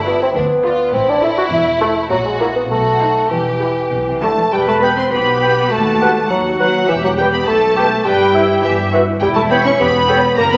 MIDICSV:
0, 0, Header, 1, 11, 480
1, 0, Start_track
1, 0, Key_signature, 1, "minor"
1, 0, Tempo, 583090
1, 771, Time_signature, 2, 2, 24, 8
1, 1736, Tempo, 602410
1, 4136, Tempo, 583090
1, 8622, End_track
2, 0, Start_track
2, 0, Title_t, "Oboe"
2, 0, Program_c, 0, 68
2, 3902, Note_on_c, 0, 79, 45
2, 3986, Note_off_c, 0, 79, 0
2, 4378, Note_on_c, 0, 79, 44
2, 4465, Note_off_c, 0, 79, 0
2, 4869, Note_on_c, 0, 78, 49
2, 4955, Note_off_c, 0, 78, 0
2, 5349, Note_on_c, 0, 78, 44
2, 5435, Note_off_c, 0, 78, 0
2, 5830, Note_on_c, 0, 79, 47
2, 5916, Note_off_c, 0, 79, 0
2, 6311, Note_on_c, 0, 79, 52
2, 6396, Note_off_c, 0, 79, 0
2, 6788, Note_on_c, 0, 76, 55
2, 6873, Note_off_c, 0, 76, 0
2, 7268, Note_on_c, 0, 76, 53
2, 7352, Note_off_c, 0, 76, 0
2, 7744, Note_on_c, 0, 79, 57
2, 7830, Note_off_c, 0, 79, 0
2, 8223, Note_on_c, 0, 79, 54
2, 8309, Note_off_c, 0, 79, 0
2, 8622, End_track
3, 0, Start_track
3, 0, Title_t, "Violin section"
3, 0, Program_c, 1, 48
3, 54, Note_on_c, 1, 74, 54
3, 232, Note_off_c, 1, 74, 0
3, 529, Note_on_c, 1, 74, 62
3, 708, Note_off_c, 1, 74, 0
3, 1013, Note_on_c, 1, 72, 62
3, 1191, Note_off_c, 1, 72, 0
3, 1492, Note_on_c, 1, 72, 58
3, 1673, Note_off_c, 1, 72, 0
3, 1979, Note_on_c, 1, 73, 57
3, 2153, Note_off_c, 1, 73, 0
3, 2460, Note_on_c, 1, 72, 54
3, 2637, Note_off_c, 1, 72, 0
3, 2937, Note_on_c, 1, 71, 50
3, 3119, Note_off_c, 1, 71, 0
3, 3424, Note_on_c, 1, 81, 54
3, 3425, Note_on_c, 1, 71, 46
3, 3488, Note_off_c, 1, 81, 0
3, 3604, Note_off_c, 1, 71, 0
3, 3668, Note_on_c, 1, 79, 54
3, 3715, Note_off_c, 1, 79, 0
3, 3786, Note_on_c, 1, 81, 52
3, 3832, Note_off_c, 1, 81, 0
3, 3907, Note_on_c, 1, 83, 52
3, 3953, Note_off_c, 1, 83, 0
3, 4028, Note_on_c, 1, 84, 68
3, 4073, Note_off_c, 1, 84, 0
3, 4141, Note_on_c, 1, 83, 61
3, 4613, Note_off_c, 1, 83, 0
3, 4625, Note_on_c, 1, 81, 60
3, 5097, Note_off_c, 1, 81, 0
3, 5105, Note_on_c, 1, 78, 56
3, 5341, Note_off_c, 1, 78, 0
3, 5352, Note_on_c, 1, 78, 57
3, 5584, Note_on_c, 1, 76, 61
3, 5585, Note_off_c, 1, 78, 0
3, 5706, Note_off_c, 1, 76, 0
3, 5719, Note_on_c, 1, 78, 54
3, 5764, Note_off_c, 1, 78, 0
3, 5836, Note_on_c, 1, 79, 63
3, 5883, Note_off_c, 1, 79, 0
3, 5952, Note_on_c, 1, 83, 63
3, 5999, Note_off_c, 1, 83, 0
3, 6071, Note_on_c, 1, 81, 71
3, 6540, Note_off_c, 1, 81, 0
3, 6552, Note_on_c, 1, 79, 66
3, 7023, Note_on_c, 1, 76, 65
3, 7026, Note_off_c, 1, 79, 0
3, 7256, Note_off_c, 1, 76, 0
3, 7501, Note_on_c, 1, 79, 72
3, 7549, Note_off_c, 1, 79, 0
3, 7623, Note_on_c, 1, 81, 68
3, 7670, Note_off_c, 1, 81, 0
3, 7744, Note_on_c, 1, 83, 74
3, 7860, Note_off_c, 1, 83, 0
3, 7860, Note_on_c, 1, 85, 84
3, 7981, Note_off_c, 1, 85, 0
3, 7984, Note_on_c, 1, 83, 85
3, 8452, Note_off_c, 1, 83, 0
3, 8472, Note_on_c, 1, 82, 74
3, 8517, Note_off_c, 1, 82, 0
3, 8594, Note_on_c, 1, 83, 70
3, 8622, Note_off_c, 1, 83, 0
3, 8622, End_track
4, 0, Start_track
4, 0, Title_t, "Violin section"
4, 0, Program_c, 2, 48
4, 0, Note_on_c, 2, 64, 67
4, 290, Note_on_c, 2, 62, 58
4, 295, Note_off_c, 2, 64, 0
4, 355, Note_off_c, 2, 62, 0
4, 540, Note_on_c, 2, 65, 60
4, 762, Note_on_c, 2, 64, 82
4, 770, Note_off_c, 2, 65, 0
4, 1712, Note_off_c, 2, 64, 0
4, 1736, Note_on_c, 2, 66, 61
4, 2201, Note_off_c, 2, 66, 0
4, 2214, Note_on_c, 2, 66, 63
4, 2687, Note_off_c, 2, 66, 0
4, 2691, Note_on_c, 2, 67, 57
4, 3409, Note_off_c, 2, 67, 0
4, 3421, Note_on_c, 2, 81, 56
4, 3646, Note_off_c, 2, 81, 0
4, 3669, Note_on_c, 2, 79, 54
4, 3785, Note_off_c, 2, 79, 0
4, 3786, Note_on_c, 2, 81, 55
4, 3833, Note_off_c, 2, 81, 0
4, 3899, Note_on_c, 2, 83, 57
4, 4016, Note_off_c, 2, 83, 0
4, 4020, Note_on_c, 2, 84, 58
4, 4067, Note_off_c, 2, 84, 0
4, 4140, Note_on_c, 2, 83, 65
4, 4613, Note_off_c, 2, 83, 0
4, 4619, Note_on_c, 2, 81, 66
4, 5097, Note_on_c, 2, 78, 58
4, 5104, Note_off_c, 2, 81, 0
4, 5163, Note_off_c, 2, 78, 0
4, 5345, Note_on_c, 2, 78, 59
4, 5580, Note_on_c, 2, 76, 65
4, 5581, Note_off_c, 2, 78, 0
4, 5704, Note_off_c, 2, 76, 0
4, 5712, Note_on_c, 2, 78, 53
4, 5759, Note_off_c, 2, 78, 0
4, 5825, Note_on_c, 2, 79, 61
4, 5873, Note_off_c, 2, 79, 0
4, 5942, Note_on_c, 2, 83, 60
4, 6062, Note_off_c, 2, 83, 0
4, 6065, Note_on_c, 2, 81, 68
4, 6547, Note_off_c, 2, 81, 0
4, 6548, Note_on_c, 2, 79, 76
4, 7015, Note_off_c, 2, 79, 0
4, 7024, Note_on_c, 2, 76, 63
4, 7090, Note_off_c, 2, 76, 0
4, 7502, Note_on_c, 2, 79, 72
4, 7549, Note_off_c, 2, 79, 0
4, 7617, Note_on_c, 2, 81, 67
4, 7665, Note_off_c, 2, 81, 0
4, 7741, Note_on_c, 2, 83, 75
4, 7789, Note_off_c, 2, 83, 0
4, 7866, Note_on_c, 2, 85, 72
4, 7913, Note_off_c, 2, 85, 0
4, 7986, Note_on_c, 2, 83, 77
4, 8452, Note_off_c, 2, 83, 0
4, 8461, Note_on_c, 2, 82, 91
4, 8577, Note_off_c, 2, 82, 0
4, 8580, Note_on_c, 2, 83, 67
4, 8622, Note_off_c, 2, 83, 0
4, 8622, End_track
5, 0, Start_track
5, 0, Title_t, "Clarinet"
5, 0, Program_c, 3, 71
5, 3900, Note_on_c, 3, 71, 43
5, 3985, Note_off_c, 3, 71, 0
5, 4388, Note_on_c, 3, 71, 43
5, 4473, Note_off_c, 3, 71, 0
5, 4873, Note_on_c, 3, 71, 48
5, 4958, Note_off_c, 3, 71, 0
5, 5357, Note_on_c, 3, 71, 47
5, 5442, Note_off_c, 3, 71, 0
5, 5826, Note_on_c, 3, 71, 52
5, 5912, Note_off_c, 3, 71, 0
5, 6315, Note_on_c, 3, 71, 51
5, 6399, Note_off_c, 3, 71, 0
5, 6802, Note_on_c, 3, 71, 56
5, 6884, Note_off_c, 3, 71, 0
5, 7272, Note_on_c, 3, 71, 55
5, 7355, Note_off_c, 3, 71, 0
5, 7747, Note_on_c, 3, 73, 58
5, 7832, Note_off_c, 3, 73, 0
5, 8224, Note_on_c, 3, 73, 58
5, 8310, Note_off_c, 3, 73, 0
5, 8622, End_track
6, 0, Start_track
6, 0, Title_t, "French horn section"
6, 0, Program_c, 4, 60
6, 3902, Note_on_c, 4, 67, 48
6, 3903, Note_on_c, 4, 71, 45
6, 3986, Note_off_c, 4, 67, 0
6, 3987, Note_off_c, 4, 71, 0
6, 4382, Note_on_c, 4, 71, 46
6, 4386, Note_on_c, 4, 67, 46
6, 4469, Note_off_c, 4, 71, 0
6, 4471, Note_off_c, 4, 67, 0
6, 4879, Note_on_c, 4, 66, 48
6, 4881, Note_on_c, 4, 71, 48
6, 4963, Note_off_c, 4, 66, 0
6, 4964, Note_off_c, 4, 71, 0
6, 5358, Note_on_c, 4, 71, 44
6, 5361, Note_on_c, 4, 66, 46
6, 5442, Note_off_c, 4, 71, 0
6, 5444, Note_off_c, 4, 66, 0
6, 5840, Note_on_c, 4, 67, 49
6, 5841, Note_on_c, 4, 71, 46
6, 5924, Note_off_c, 4, 67, 0
6, 5924, Note_off_c, 4, 71, 0
6, 6319, Note_on_c, 4, 71, 48
6, 6320, Note_on_c, 4, 67, 50
6, 6403, Note_off_c, 4, 71, 0
6, 6404, Note_off_c, 4, 67, 0
6, 6792, Note_on_c, 4, 64, 53
6, 6799, Note_on_c, 4, 71, 50
6, 6876, Note_off_c, 4, 64, 0
6, 6881, Note_off_c, 4, 71, 0
6, 7276, Note_on_c, 4, 71, 56
6, 7277, Note_on_c, 4, 64, 54
6, 7358, Note_off_c, 4, 71, 0
6, 7359, Note_off_c, 4, 64, 0
6, 7762, Note_on_c, 4, 73, 56
6, 7766, Note_on_c, 4, 67, 60
6, 7843, Note_off_c, 4, 73, 0
6, 7846, Note_off_c, 4, 67, 0
6, 8242, Note_on_c, 4, 73, 56
6, 8243, Note_on_c, 4, 67, 62
6, 8323, Note_off_c, 4, 73, 0
6, 8324, Note_off_c, 4, 67, 0
6, 8622, End_track
7, 0, Start_track
7, 0, Title_t, "Viola section"
7, 0, Program_c, 5, 48
7, 51, Note_on_c, 5, 71, 54
7, 53, Note_on_c, 5, 65, 58
7, 231, Note_off_c, 5, 71, 0
7, 232, Note_off_c, 5, 65, 0
7, 525, Note_on_c, 5, 71, 68
7, 527, Note_on_c, 5, 65, 63
7, 706, Note_off_c, 5, 71, 0
7, 707, Note_off_c, 5, 65, 0
7, 1008, Note_on_c, 5, 64, 60
7, 1009, Note_on_c, 5, 69, 57
7, 1188, Note_off_c, 5, 64, 0
7, 1188, Note_off_c, 5, 69, 0
7, 1497, Note_on_c, 5, 69, 59
7, 1498, Note_on_c, 5, 64, 66
7, 1676, Note_off_c, 5, 64, 0
7, 1676, Note_off_c, 5, 69, 0
7, 1974, Note_on_c, 5, 64, 54
7, 1974, Note_on_c, 5, 66, 54
7, 2150, Note_off_c, 5, 64, 0
7, 2150, Note_off_c, 5, 66, 0
7, 2449, Note_on_c, 5, 66, 55
7, 2451, Note_on_c, 5, 63, 54
7, 2631, Note_off_c, 5, 66, 0
7, 2632, Note_off_c, 5, 63, 0
7, 2942, Note_on_c, 5, 64, 46
7, 2942, Note_on_c, 5, 67, 44
7, 3122, Note_off_c, 5, 64, 0
7, 3122, Note_off_c, 5, 67, 0
7, 3428, Note_on_c, 5, 64, 48
7, 3428, Note_on_c, 5, 67, 49
7, 3605, Note_off_c, 5, 64, 0
7, 3606, Note_off_c, 5, 67, 0
7, 3665, Note_on_c, 5, 71, 58
7, 4105, Note_off_c, 5, 71, 0
7, 4144, Note_on_c, 5, 67, 62
7, 4615, Note_off_c, 5, 67, 0
7, 4625, Note_on_c, 5, 66, 56
7, 4862, Note_on_c, 5, 67, 52
7, 4865, Note_off_c, 5, 66, 0
7, 4928, Note_off_c, 5, 67, 0
7, 5103, Note_on_c, 5, 66, 58
7, 5577, Note_off_c, 5, 66, 0
7, 5591, Note_on_c, 5, 67, 60
7, 6068, Note_off_c, 5, 67, 0
7, 6070, Note_on_c, 5, 69, 69
7, 6304, Note_off_c, 5, 69, 0
7, 6310, Note_on_c, 5, 67, 64
7, 6376, Note_off_c, 5, 67, 0
7, 6557, Note_on_c, 5, 71, 70
7, 6786, Note_off_c, 5, 71, 0
7, 6798, Note_on_c, 5, 64, 63
7, 7025, Note_off_c, 5, 64, 0
7, 7025, Note_on_c, 5, 67, 67
7, 7262, Note_off_c, 5, 67, 0
7, 7263, Note_on_c, 5, 66, 70
7, 7329, Note_off_c, 5, 66, 0
7, 7504, Note_on_c, 5, 64, 68
7, 7973, Note_off_c, 5, 64, 0
7, 7987, Note_on_c, 5, 67, 71
7, 8052, Note_off_c, 5, 67, 0
7, 8219, Note_on_c, 5, 69, 71
7, 8284, Note_off_c, 5, 69, 0
7, 8462, Note_on_c, 5, 70, 78
7, 8622, Note_off_c, 5, 70, 0
7, 8622, End_track
8, 0, Start_track
8, 0, Title_t, "Bassoon"
8, 0, Program_c, 6, 70
8, 60, Note_on_c, 6, 59, 76
8, 175, Note_off_c, 6, 59, 0
8, 185, Note_on_c, 6, 60, 80
8, 237, Note_off_c, 6, 60, 0
8, 297, Note_on_c, 6, 59, 79
8, 773, Note_on_c, 6, 60, 90
8, 785, Note_off_c, 6, 59, 0
8, 899, Note_on_c, 6, 62, 80
8, 912, Note_off_c, 6, 60, 0
8, 1013, Note_off_c, 6, 62, 0
8, 1018, Note_on_c, 6, 64, 76
8, 1070, Note_off_c, 6, 64, 0
8, 1132, Note_on_c, 6, 66, 79
8, 1186, Note_off_c, 6, 66, 0
8, 1255, Note_on_c, 6, 64, 85
8, 1486, Note_off_c, 6, 64, 0
8, 1491, Note_on_c, 6, 57, 71
8, 1601, Note_off_c, 6, 57, 0
8, 1730, Note_on_c, 6, 54, 78
8, 1785, Note_off_c, 6, 54, 0
8, 1851, Note_on_c, 6, 56, 61
8, 1967, Note_off_c, 6, 56, 0
8, 1972, Note_on_c, 6, 58, 69
8, 2025, Note_off_c, 6, 58, 0
8, 2093, Note_on_c, 6, 59, 72
8, 2147, Note_off_c, 6, 59, 0
8, 2213, Note_on_c, 6, 57, 68
8, 2686, Note_off_c, 6, 57, 0
8, 2692, Note_on_c, 6, 52, 62
8, 3409, Note_off_c, 6, 52, 0
8, 3431, Note_on_c, 6, 57, 59
8, 3668, Note_on_c, 6, 55, 61
8, 3680, Note_off_c, 6, 57, 0
8, 3781, Note_off_c, 6, 55, 0
8, 3786, Note_on_c, 6, 57, 65
8, 3888, Note_off_c, 6, 57, 0
8, 3892, Note_on_c, 6, 59, 64
8, 3947, Note_off_c, 6, 59, 0
8, 4015, Note_on_c, 6, 60, 67
8, 4132, Note_off_c, 6, 60, 0
8, 4137, Note_on_c, 6, 59, 76
8, 4620, Note_on_c, 6, 57, 74
8, 4632, Note_off_c, 6, 59, 0
8, 5104, Note_off_c, 6, 57, 0
8, 5108, Note_on_c, 6, 54, 65
8, 5216, Note_off_c, 6, 54, 0
8, 5350, Note_on_c, 6, 54, 60
8, 5584, Note_off_c, 6, 54, 0
8, 5588, Note_on_c, 6, 52, 76
8, 5642, Note_off_c, 6, 52, 0
8, 5717, Note_on_c, 6, 54, 59
8, 5768, Note_off_c, 6, 54, 0
8, 5830, Note_on_c, 6, 55, 61
8, 5883, Note_off_c, 6, 55, 0
8, 5958, Note_on_c, 6, 59, 69
8, 6072, Note_on_c, 6, 57, 80
8, 6084, Note_off_c, 6, 59, 0
8, 6549, Note_on_c, 6, 55, 81
8, 6562, Note_off_c, 6, 57, 0
8, 7025, Note_off_c, 6, 55, 0
8, 7036, Note_on_c, 6, 52, 67
8, 7140, Note_off_c, 6, 52, 0
8, 7511, Note_on_c, 6, 55, 87
8, 7563, Note_off_c, 6, 55, 0
8, 7624, Note_on_c, 6, 57, 76
8, 7677, Note_off_c, 6, 57, 0
8, 7749, Note_on_c, 6, 59, 81
8, 7801, Note_off_c, 6, 59, 0
8, 7875, Note_on_c, 6, 61, 85
8, 7982, Note_off_c, 6, 61, 0
8, 7986, Note_on_c, 6, 59, 98
8, 8453, Note_off_c, 6, 59, 0
8, 8466, Note_on_c, 6, 58, 98
8, 8518, Note_off_c, 6, 58, 0
8, 8594, Note_on_c, 6, 59, 78
8, 8622, Note_off_c, 6, 59, 0
8, 8622, End_track
9, 0, Start_track
9, 0, Title_t, "Cello section"
9, 0, Program_c, 7, 48
9, 0, Note_on_c, 7, 43, 74
9, 189, Note_off_c, 7, 43, 0
9, 286, Note_on_c, 7, 38, 67
9, 667, Note_off_c, 7, 38, 0
9, 763, Note_on_c, 7, 45, 68
9, 1146, Note_off_c, 7, 45, 0
9, 1242, Note_on_c, 7, 40, 66
9, 1629, Note_off_c, 7, 40, 0
9, 1733, Note_on_c, 7, 46, 69
9, 2109, Note_off_c, 7, 46, 0
9, 2200, Note_on_c, 7, 47, 54
9, 2587, Note_off_c, 7, 47, 0
9, 2685, Note_on_c, 7, 40, 60
9, 3076, Note_off_c, 7, 40, 0
9, 3175, Note_on_c, 7, 47, 48
9, 3225, Note_off_c, 7, 47, 0
9, 3302, Note_on_c, 7, 48, 40
9, 3417, Note_on_c, 7, 50, 56
9, 3417, Note_on_c, 7, 57, 57
9, 3422, Note_off_c, 7, 48, 0
9, 3467, Note_off_c, 7, 50, 0
9, 3480, Note_off_c, 7, 57, 0
9, 3541, Note_on_c, 7, 52, 46
9, 3590, Note_off_c, 7, 52, 0
9, 3658, Note_on_c, 7, 55, 50
9, 3707, Note_off_c, 7, 55, 0
9, 3772, Note_on_c, 7, 57, 53
9, 3822, Note_off_c, 7, 57, 0
9, 3891, Note_on_c, 7, 59, 55
9, 4011, Note_off_c, 7, 59, 0
9, 4011, Note_on_c, 7, 60, 54
9, 4059, Note_off_c, 7, 60, 0
9, 4124, Note_on_c, 7, 59, 60
9, 4604, Note_off_c, 7, 59, 0
9, 4614, Note_on_c, 7, 57, 65
9, 5097, Note_on_c, 7, 54, 53
9, 5102, Note_off_c, 7, 57, 0
9, 5162, Note_off_c, 7, 54, 0
9, 5338, Note_on_c, 7, 54, 63
9, 5578, Note_off_c, 7, 54, 0
9, 5580, Note_on_c, 7, 52, 62
9, 5630, Note_off_c, 7, 52, 0
9, 5700, Note_on_c, 7, 54, 57
9, 5750, Note_off_c, 7, 54, 0
9, 5820, Note_on_c, 7, 55, 56
9, 5870, Note_off_c, 7, 55, 0
9, 5943, Note_on_c, 7, 59, 56
9, 5992, Note_off_c, 7, 59, 0
9, 6064, Note_on_c, 7, 57, 62
9, 6536, Note_off_c, 7, 57, 0
9, 6547, Note_on_c, 7, 55, 69
9, 7014, Note_off_c, 7, 55, 0
9, 7024, Note_on_c, 7, 52, 56
9, 7090, Note_off_c, 7, 52, 0
9, 7501, Note_on_c, 7, 55, 74
9, 7548, Note_off_c, 7, 55, 0
9, 7622, Note_on_c, 7, 57, 69
9, 7670, Note_off_c, 7, 57, 0
9, 7742, Note_on_c, 7, 59, 75
9, 7789, Note_off_c, 7, 59, 0
9, 7861, Note_on_c, 7, 61, 75
9, 7909, Note_off_c, 7, 61, 0
9, 7983, Note_on_c, 7, 59, 77
9, 8451, Note_off_c, 7, 59, 0
9, 8459, Note_on_c, 7, 58, 78
9, 8576, Note_off_c, 7, 58, 0
9, 8579, Note_on_c, 7, 59, 76
9, 8622, Note_off_c, 7, 59, 0
9, 8622, End_track
10, 0, Start_track
10, 0, Title_t, "Double bass section"
10, 0, Program_c, 8, 48
10, 0, Note_on_c, 8, 31, 77
10, 190, Note_off_c, 8, 31, 0
10, 291, Note_on_c, 8, 38, 70
10, 670, Note_off_c, 8, 38, 0
10, 771, Note_on_c, 8, 33, 75
10, 1150, Note_off_c, 8, 33, 0
10, 1244, Note_on_c, 8, 28, 63
10, 1630, Note_off_c, 8, 28, 0
10, 1732, Note_on_c, 8, 34, 67
10, 2109, Note_off_c, 8, 34, 0
10, 2211, Note_on_c, 8, 35, 63
10, 2593, Note_off_c, 8, 35, 0
10, 2695, Note_on_c, 8, 28, 56
10, 3081, Note_off_c, 8, 28, 0
10, 3182, Note_on_c, 8, 35, 54
10, 3564, Note_off_c, 8, 35, 0
10, 3665, Note_on_c, 8, 40, 58
10, 4058, Note_off_c, 8, 40, 0
10, 4136, Note_on_c, 8, 35, 57
10, 4540, Note_off_c, 8, 35, 0
10, 4615, Note_on_c, 8, 39, 55
10, 5021, Note_off_c, 8, 39, 0
10, 5110, Note_on_c, 8, 39, 55
10, 5509, Note_off_c, 8, 39, 0
10, 5592, Note_on_c, 8, 40, 57
10, 5989, Note_off_c, 8, 40, 0
10, 6075, Note_on_c, 8, 35, 57
10, 6471, Note_off_c, 8, 35, 0
10, 6559, Note_on_c, 8, 43, 64
10, 6951, Note_off_c, 8, 43, 0
10, 7030, Note_on_c, 8, 43, 67
10, 7423, Note_off_c, 8, 43, 0
10, 7512, Note_on_c, 8, 40, 78
10, 7886, Note_off_c, 8, 40, 0
10, 7985, Note_on_c, 8, 40, 77
10, 8362, Note_off_c, 8, 40, 0
10, 8463, Note_on_c, 8, 42, 74
10, 8622, Note_off_c, 8, 42, 0
10, 8622, End_track
11, 0, Start_track
11, 0, Title_t, "Tuba"
11, 0, Program_c, 10, 58
11, 3659, Note_on_c, 10, 28, 55
11, 4055, Note_off_c, 10, 28, 0
11, 4135, Note_on_c, 10, 35, 58
11, 4539, Note_off_c, 10, 35, 0
11, 4620, Note_on_c, 10, 39, 61
11, 5024, Note_off_c, 10, 39, 0
11, 5106, Note_on_c, 10, 39, 59
11, 5507, Note_off_c, 10, 39, 0
11, 5589, Note_on_c, 10, 28, 59
11, 5987, Note_off_c, 10, 28, 0
11, 6070, Note_on_c, 10, 35, 65
11, 6469, Note_off_c, 10, 35, 0
11, 6546, Note_on_c, 10, 31, 68
11, 6944, Note_off_c, 10, 31, 0
11, 7027, Note_on_c, 10, 31, 68
11, 7421, Note_off_c, 10, 31, 0
11, 7505, Note_on_c, 10, 28, 69
11, 7882, Note_off_c, 10, 28, 0
11, 7986, Note_on_c, 10, 28, 76
11, 8362, Note_off_c, 10, 28, 0
11, 8458, Note_on_c, 10, 30, 83
11, 8622, Note_off_c, 10, 30, 0
11, 8622, End_track
0, 0, End_of_file